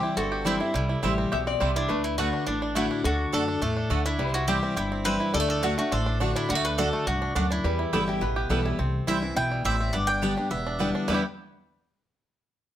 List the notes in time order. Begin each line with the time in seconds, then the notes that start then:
Already playing: C3 E3 G3 C4 E4 G4 C5
0.03 E4
0.17 G1 G2 C4 F#4 A4
0.32 G4
0.45 E3 G3 C4 E4 C5 G5
0.60 C4 E4
0.74 C2 C3 G3 E4
0.89 E4
1.02 A1 E3 G3 C4 E4 G4 C5 G5
1.18 C4
1.32 B1 B2 G4 E5
1.47 C4 D5
1.60 C2 C3 G3 C4 E4 C5 G5
1.76 D4 E4
1.89 D2 D3 A3 B4
2.04 E4
2.18 D3 A3 D4 F#4 D5 F#5
2.33 D4
2.47 A1 A2 D4
2.62 D4
2.75 D3 A3 D4 E4 F#4 D5 F#5
2.91 D4
3.04 D2 D3 D4 F#4 A4
3.32 F#2 D3 A3 D4 F#4 A4 D5 F#5
3.48 D4
3.61 E2 A2 A3 A4
3.77 D4
3.90 D2 D3 A3 F#4 D5 F#5
4.06 D4 E4
4.19 C2 C3 G3 C5
4.34 E4 F#4
4.47 E3 G3 C4 E4 G4 C5 G5
4.63 C4
4.76 G1 G2 E4 G4
4.92 C4
5.04 E3 G3 C4 E4 B4 C5 G5
5.20 E4
5.34 D2 D3 G3 A4 D5
5.40 A3
5.49 D4 A4
5.62 D3 A3 D4 F#4 D5 F#5
5.78 A3 D4 F#4
5.92 A1 A2 D4 A4 C5
6.06 D4
6.20 D3 A3 D4 F#4 D5 F#5
6.36 D4 E4
6.49 D2 D3 G3 F#4
6.55 A3
6.65 D4 B4
6.78 D3 A3 D4 F#4 A4 D5 F#5
6.93 A3
7.06 C2 G2 D4 F#4
7.22 D4
7.35 D2 F#2 A3 D4 F#4 D5 F#5
7.51 D4 E4
7.64 E2 G3 B4
7.79 E4
7.93 G1 E3 G3 B3 E4 G4 A4 B4 G5
8.08 E4 G4
8.21 A1 B2 B3 B4
8.36 G4
8.50 B1 E3 G3 B3 E4 A4 B4 G5
8.65 E4 G4
8.79 C2 C3 C4
9.07 C2 E3 G3 C4 E4 C5 E5 G5
9.22 E3 C4 E4
9.36 B1 B2 E4 G5
9.52 G3
9.65 A1 A2 C4 E4 G4 C5 E5 G5
9.80 C4
9.93 G1 G2 B3 D5
10.07 D4 G5
10.21 D3 G3 B3 G4 D5 G5
10.36 B3 D4 G4
10.51 E1 E2 B3 E5
10.67 D4
10.79 D3 G3 B3 E4 D5 G5
10.95 D4
11.08 E2 B2 D3 G3 B3 E4 B4 D5 G5
11.12 E4 G4